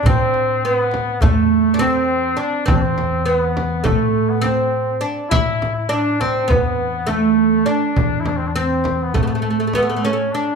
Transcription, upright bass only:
\new Staff \with { instrumentName = "Upright bass" } { \clef bass \time 9/8 \tempo 4. = 68 a,2 e,2 r8 | e,2 a,2 r8 | a,2 e,2 r8 | e,2 a,2 r8 | }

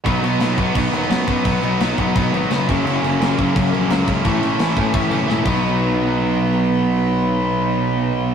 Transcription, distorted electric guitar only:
\new Staff \with { instrumentName = "Distorted electric guitar" } { \clef bass \time 4/4 \key b \major \tempo 4 = 172 <b, fis b dis'>8 <b, fis b dis'>8 <b, fis b dis'>8 <b, fis b dis'>8 <b, fis b dis'>8 <b, fis b dis'>8 <b, fis b dis'>8 <b, fis b dis'>8 | <b, fis b dis'>8 <b, fis b dis'>8 <b, fis b dis'>8 <b, fis b dis'>8 <b, fis b dis'>8 <b, fis b dis'>8 <b, fis b dis'>8 <fis, cis fis ais cis'>8 | <fis, cis fis ais cis'>8 <fis, cis fis ais cis'>8 <fis, cis fis ais cis'>8 <fis, cis fis ais cis'>8 <fis, cis fis ais cis'>8 <fis, cis fis ais cis'>8 <fis, cis fis ais cis'>8 <fis, cis fis ais cis'>8 | <a, e a cis' e'>8 <a, e a cis' e'>8 <a, e a cis' e'>8 <a, e a cis' e'>8 <a, e a cis' e'>8 <a, e a cis' e'>8 <a, e a cis' e'>8 <b, fis b dis'>8~ |
<b, fis b dis'>1~ | <b, fis b dis'>1 | }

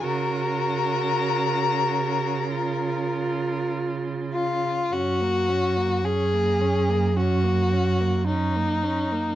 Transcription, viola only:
\new Staff \with { instrumentName = "Viola" } { \time 4/4 \key fis \major \tempo 4 = 53 fis'2 eis'4.~ eis'16 r16 | cis'16 ais16 cis'16 ais16 cis'16 ais16 cis'16 ais16 cis'16 ais16 cis'16 ais16 cis'16 ais16 cis'16 ais16 | }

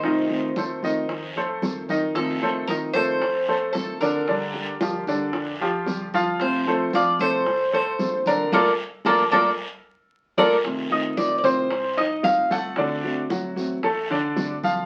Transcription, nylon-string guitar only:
\new Staff \with { instrumentName = "Nylon-string guitar" } { \time 4/4 \key f \mixolydian \tempo 4 = 113 <c ees a c' f'>8 <ees a c' f'>8 <ees a c' f'>8 <ees a c' f'>8 r4 <ees a c' f'>4 | <c ees a c' f'>8 <ees a c' f'>8 <ees a c' f'>8 <ees a c' f'>8 r4 <ees a c' f'>4 | <d g d' g'>8 <g d' g'>8 <d g d' g'>8 <g d' g'>8 r4 <d g d' g'>4 | <c f a c' f'>8 <f a c' f'>8 <f a c' f'>8 <f a c' f'>8 r4 <f a c' f'>4 |
<a bes d'>8 r8 <a bes d'>8 <a bes d'>8 r4. <a bes d'>8 | <c ees a c' f'>8 <ees a c' f'>8 <ees a c' f'>8 <ees a c' f'>8 r4 <a c' f'>4 | <d a c' fis'>8 <a c' fis'>8 <d a c' fis'>8 <a c' fis'>8 r4 <d a c' fis'>4 | }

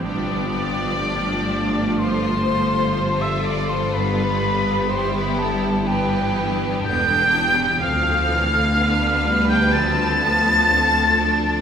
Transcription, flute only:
\new Staff \with { instrumentName = "Flute" } { \time 4/4 \key g \mixolydian \tempo 4 = 62 d'''2 c'''4~ c'''16 e'''16 d'''16 c'''16 | b''4 c'''16 b''16 a''8 g''8. r16 g'''4 | f'''4.~ f'''16 g'''16 a'''2 | }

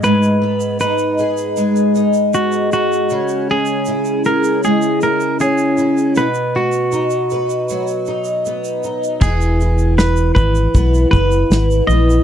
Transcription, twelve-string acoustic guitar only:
\new Staff \with { instrumentName = "Twelve-string acoustic guitar" } { \time 4/4 \key e \lydian \tempo 4 = 78 gis,8 b8 dis'8 gis'8 gis8 dis'8 b8 dis'8 | cis8 cis'8 e'8 gis'8 gis8 e'8 cis'8 e'8 | b,8 b8 dis'8 b'8 fis8 dis'8 b8 dis'8 | e8 e'8 b'8 e'8 b8 b'8 e'8 b8 | }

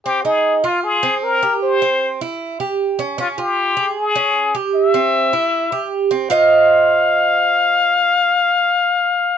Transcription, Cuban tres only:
\new Staff \with { instrumentName = "Cuban tres" } { \time 4/4 \key c \phrygian \tempo 4 = 154 c'8 ees'4 f'4 c'4 g'8~ | g'8 c'4 e'4 g'4 des'8 | des'8 f'4 aes'4 des'4 g'8~ | g'8 c'4 e'4 g'4 c'8 |
<f' c'' ees''>1~ | <f' c'' ees''>1 | }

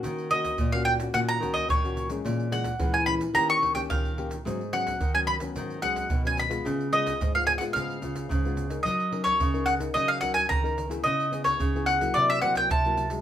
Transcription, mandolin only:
\new Staff \with { instrumentName = "Mandolin" } { \time 4/4 \key ees \minor \tempo 4 = 109 r8 ees''8. f''16 g''8 ges''16 bes''8 ees''16 des''8. r16 | r8 ges''8. aes''16 ces'''8 bes''16 des'''8 g''16 f''8. r16 | r8 ges''8. aes''16 ces'''8 r8 ges''8. aes''16 ces'''8 | r8 ees''8. f''16 aes''16 ges''16 f''4. r8 |
ees''8. des''8. ges''8 ees''16 f''16 ges''16 aes''16 bes''8. r16 | ees''8. des''8. ges''8 d''16 e''16 fis''16 g''16 a''8. r16 | }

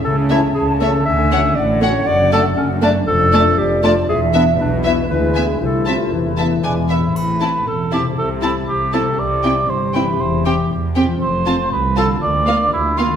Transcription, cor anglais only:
\new Staff \with { instrumentName = "Cor anglais" } { \time 2/4 \key d \lydian \tempo 4 = 119 r2 | r2 | r2 | \key a \minor r2 |
r2 | r2 | r4 d'8 e'8 | b'4 a'8 g'8 |
a'8 e'8 g'8 a'8 | d''4 c''8 b'8 | c''8 g'8 r4 | c''4 b'8 a'8 |
d''4 e'8 f'8 | }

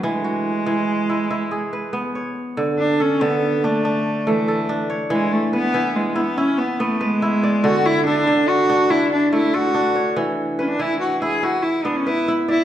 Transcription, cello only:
\new Staff \with { instrumentName = "Cello" } { \time 12/8 \key d \lydian \tempo 4. = 95 gis1~ gis4 r4 | r8 d'8 cis'8 b4 a4. e4. r8 | gis8 a8 b4 gis8 b8 cis'8 b8 a8 gis4. | fis'8 e'8 d'4 fis'4 e'8 d'8 e'8 fis'4. |
r4 cis'16 d'16 e'8 fis'8 gis'8 fis'8 e'8 d'16 cis'16 e'8 r8 e'8 | }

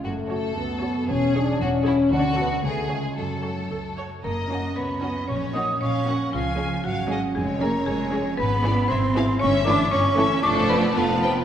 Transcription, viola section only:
\new Staff \with { instrumentName = "Viola section" } { \time 2/4 \key fis \minor \tempo 4 = 116 r8 <fis' cis''>8 r8 <fis' cis''>8 | r8 <gis' cis''>8 r8 <gis' cis''>8 | r8 <fis' a'>8 r8 <gis' cis''>8 | r8 <a' cis''>8 a'8 cis''8 |
\key fis \major r8 cis'8 r8 cis'8 | r8 <ais cis'>8 r8 <ais cis'>8 | r8 <gis cis'>8 r8 <gis cis'>8 | r8 <gis cis'>8 r8 <gis cis'>8 |
\key d \dorian r8 <e b>8 r8 <e b>8 | r8 <e a>8 r8 <e a>8 | <f a>4 <f b>4 | }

